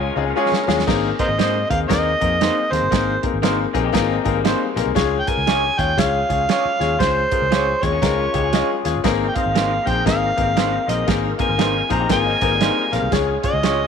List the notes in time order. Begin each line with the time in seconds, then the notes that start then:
Already playing: G#3 C#4 F4 A#4 G#5
0.01 C#4 F4
0.16 C#2 G#3 C4 C#4 D#4 F4 G#4
0.27 A#3 C#4
0.36 G#3 C#4 F4 G#4 C#5
0.52 muted fingered electric bass stroke, snare
0.67 D#2 G#3 C#4 F4 G#4, snare
0.79 snare
0.87 G#1 A#3 C4 D#4 G#4 A#4, kick, snare, crash
1.19 A#3 C4 D#4 G#4 A#4 C5 D#5, kick, closed hi-hat
1.28 G#1
1.38 G#2 A#3 C4 D#4 G#4 A#4 C5, snare, closed hi-hat
1.69 D#2 A#3 C4 D#4 G#4 A#4 F5, kick, closed hi-hat
1.88 D#2 A#3 C4 D#4 G#4 A#4 D#5, kick, snare, closed hi-hat
2.20 F2 A#3 C4 D#4 G#4 A#4, kick, closed hi-hat
2.40 A#3 C4 D#4 G#4 A#4 C5, snare, closed hi-hat
2.72 D#2 A#3 C4 D#4 G#4 A#4 C5, snare, closed hi-hat
2.82 G1
2.91 G#1 A#3 C4 D#4 G#4 A#4, kick, snare, closed hi-hat
3.23 A#3 C4 D#4 G#4 A#4, kick, closed hi-hat
3.34 G#1
3.42 A#3 C4 D#4 G#4 A#4 C5, snare, closed hi-hat
3.73 A#1 A#3 C4 D#4 F4 G#4 A#4, kick, closed hi-hat
3.84 D#4 G4
3.93 G#1 A#3 C4 D#4 F4 G#4 A#4, kick, snare, closed hi-hat
4.09 C4 D#4
4.24 G#1 G#3 A#3 C4 D#4 G#4 A#4, kick, closed hi-hat
4.35 G3 A#3
4.44 A#3 C4 D#4 G#4 A#4 C5, snare, closed hi-hat
4.76 A#1 A#3 C4 D#4 G#4 A#4, snare, closed hi-hat
4.86 C2
4.95 C#2 G#3 C#4 F4 G#4 C#5, kick, snare, closed hi-hat
5.19 G5
5.26 G#3 C#4 F4 G#4 A#4 G#5, kick, closed hi-hat
5.38 C#2
5.46 G#3 C#4 F4 G#4 C#5, snare, closed hi-hat
5.78 D#2 G#3 C#4 F4 G#4 C#5 G5, kick, closed hi-hat
5.97 C#2 G#3 C#4 F4 G#4 C#5 F5, kick, snare, closed hi-hat
6.29 C#2 G#3 C#4 F4 G#4 C#5, kick, closed hi-hat
6.48 G#3 C#4 F4 G#4 C#5, snare, closed hi-hat
6.65 muted fingered electric bass stroke
6.79 D#2 G#3 C#4 F4 G#4 C#5, snare, closed hi-hat
6.99 C#2 G#3 C#4 F4 G#4 C5, kick, snare, closed hi-hat
7.31 G#3 C#4 F4 G#4 A#4, kick, closed hi-hat
7.42 C#2
7.51 G#3 C#4 F4 G#4 C#5, snare, closed hi-hat
7.82 D#2 G#3 C4 C#4 F4 G#4 C#5, kick, closed hi-hat
7.92 A#3 C#4
8.01 C#2 G#3 C4 C#4 D#4 F4 G#4 A#4, kick, snare, closed hi-hat
8.18 C#4 F4
8.34 C#2 G#3 C#4 D#4 F4 G4 G#4 C#5, kick, closed hi-hat
8.44 F4 G#4
8.53 G#3 C#4 F4 G#4 C#5 D#5, snare, closed hi-hat
8.84 D#2 G#3 C#4 F4 G#4 C#5, snare, closed hi-hat
8.96 G1
9.04 G#1 A#3 C4 D#4 G#4 A#4, kick, snare, closed hi-hat
9.28 G5
9.35 A#3 C4 D#4 G#4 C5 F5, kick, closed hi-hat
9.46 G#1
9.54 A#3 C4 D#4 G#4 A#4 C5, snare, closed hi-hat
9.85 A#1 A#3 C4 D#4 G#4 C5 G5, kick, closed hi-hat
10.05 G#1 A#3 C4 D#4 G#4 A#4 F5, kick, snare, closed hi-hat
10.36 G#1 A#3 C4 D#4 G#4 A#4, kick, closed hi-hat
10.55 A#3 C4 D#4 G#4 A#4 C5, snare, closed hi-hat
10.87 A#1 A#3 C4 D#4 G#4 A#4 D#5, snare, closed hi-hat
11.07 G#1 A#3 C4 D#4 F4 G#4 A#4, kick, snare, closed hi-hat
11.38 A#3 C4 D#4 G#4 A#4 G#5, kick, closed hi-hat
11.49 G#1
11.58 A#3 C4 D#4 G#4 A#4 C5, snare, closed hi-hat
11.89 A#1 A#3 C4 D#4 F4 G#4 C5 A#5, kick, closed hi-hat
12.00 D#4 G4
12.09 G#1 A#3 C4 D#4 F4 G#4 A#4 G#5, kick, snare, closed hi-hat
12.26 C4 D#4
12.41 G#1 G#3 A#3 C4 D#4 G#4 A#4, kick, closed hi-hat
12.52 G3 A#3
12.61 A#3 C4 D#4 G#4 A#4 C5, snare, closed hi-hat
12.92 A#1 A#3 C4 D#4 G#4 A#4 F5, snare, closed hi-hat
13.02 C2
13.12 C#2 G#3 C#4 F4 G#4 C#5, kick, snare, closed hi-hat
13.43 G#3 C#4 F4 G#4 C#5 D#5, kick, closed hi-hat
13.53 C#2
13.63 G#3 C#4 F4 G#4 C#5, snare, closed hi-hat